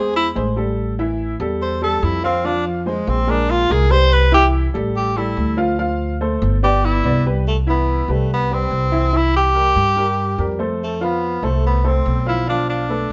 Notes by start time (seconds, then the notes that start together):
Already playing: E2 G#3 G#4 C5
0.16 E4
0.35 A1 G#3 G#4 C5
0.56 G3 G4 A4
0.99 E3 E4 E5
1.40 E2 G3 G4 A4
1.62 C5
1.82 G3 G4 A4
2.03 F2 E4
2.23 F3 C4 F4 F5
2.44 F3 D4 F4 F5
2.67 F3
2.86 G#3 G#4 C5
3.07 A#1 C4
3.27 G#3 D4 G#4 A#4
3.50 F4
3.69 C2 G#3 G#4 A#4
3.90 G3 G4 B4 C5
4.13 B4
4.32 E3 E4 G4 E5
4.74 A1 G3 G4 A4
4.96 G4
5.16 G3 E4 G4 A4
5.37 D2
5.57 F3 F4 F5
5.78 F3 F4 F5
6.21 A3 A4 C5
6.42 G1
6.63 B3 G4 B4 D5
6.85 E4
7.04 C2 B3 B4 D5
7.26 G3 G4 B4
7.47 A3
7.67 E3 B3 E4 E5
8.08 C2 G3 A3 G4 B4
8.33 B3
8.51 G3 C4 G4 B4
8.71 C2
8.92 E3 E4 E5
9.13 E3 E4 E5
9.36 G4
9.54 G3 G4 A#4
9.76 G2
9.96 G3 G4 A#4
10.38 F2 G3 G4 A#4
10.59 A3 A4 C5
10.83 A3
11.01 F3 B3 F4 F5
11.43 C2 A3 A4 C5
11.66 B3
11.84 A3 C4 A4 C5
12.06 B1
12.26 F3 E4 F4 F5
12.47 F3 D4 F4 F5
12.69 D4
12.89 A3 A4 B4